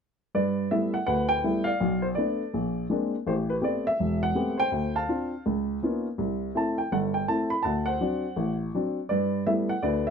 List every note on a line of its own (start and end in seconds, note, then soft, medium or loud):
0.35 0.66 G2 medium
0.35 1.03 B4 soft
0.35 0.72 D5 medium
0.71 0.95 G3 soft
0.71 0.95 A3 soft
0.71 0.95 B3 soft
0.71 0.95 E4 soft
0.71 0.94 E5 medium
0.94 1.05 F#5 medium
1.07 1.39 D2 medium
1.07 1.76 B4 medium
1.07 1.28 F#5 medium
1.29 1.67 G5 loud
1.44 1.68 G3 soft
1.44 1.68 A3 soft
1.44 1.68 B3 soft
1.44 1.68 E4 soft
1.64 2.13 D5 medium
1.64 2.03 F5 medium
1.80 2.12 B1 medium
2.02 2.07 C5 medium
2.15 2.41 A3 soft
2.15 2.41 B3 soft
2.15 2.51 A4 soft
2.15 2.85 D5 medium
2.19 2.42 D4 soft
2.54 2.85 A#1 medium
2.90 3.14 G#3 soft
2.90 3.14 A#3 soft
2.90 3.14 C4 soft
2.90 3.15 D4 soft
3.27 3.58 A1 medium
3.27 3.60 G4 soft
3.27 3.32 C5 medium
3.50 3.55 B4 medium
3.61 3.86 A3 soft
3.61 3.86 B3 soft
3.61 3.86 C4 soft
3.61 3.86 G4 soft
3.61 3.87 D5 medium
3.87 4.20 E5 medium
4.00 4.31 E1 medium
4.23 4.56 F#5 medium
4.35 4.60 A3 soft
4.35 4.59 B3 soft
4.35 4.60 C4 soft
4.35 4.60 G4 soft
4.58 5.27 C5 medium
4.58 4.93 G5 loud
4.72 5.03 D2 medium
4.96 5.42 F5 medium
4.96 5.42 A5 medium
5.08 5.33 C4 soft
5.08 5.33 D4 soft
5.08 5.33 F4 soft
5.46 5.77 C#2 medium
5.82 6.06 A#3 soft
5.82 6.06 B3 soft
5.82 6.06 C#4 soft
5.82 6.06 D#4 soft
5.82 6.07 F4 soft
6.18 6.49 C2 medium
6.55 6.79 A3 soft
6.55 6.79 C4 soft
6.55 6.79 E4 soft
6.55 6.77 A5 medium
6.78 6.90 G5 medium
6.92 7.23 G1 medium
6.92 7.61 A4 medium
6.92 6.97 F#5 medium
7.14 7.28 G5 medium
7.28 7.52 A3 soft
7.28 7.52 C4 soft
7.28 7.53 E4 soft
7.28 7.51 A5 medium
7.50 7.64 B5 medium
7.63 7.96 D2 medium
7.63 7.84 F#5 medium
7.63 7.87 A5 medium
7.86 8.56 C5 soft
7.86 8.55 F#5 medium
8.01 8.24 F#3 soft
8.01 8.25 C4 soft
8.01 8.25 D4 soft
8.36 8.68 A1 medium
8.74 8.98 F#3 soft
8.74 8.98 C4 soft
8.74 8.98 D4 soft
9.09 9.42 G2 medium
9.09 9.79 B4 soft
9.09 9.43 D5 medium
9.46 9.70 G3 soft
9.46 9.70 A3 soft
9.46 9.71 B3 soft
9.46 9.71 E4 soft
9.46 9.52 E5 medium
9.69 9.83 F#5 medium
9.82 10.10 D2 medium
9.82 10.10 D3 medium
9.82 10.10 B4 soft
9.82 10.06 D5 medium
10.07 10.10 E5 medium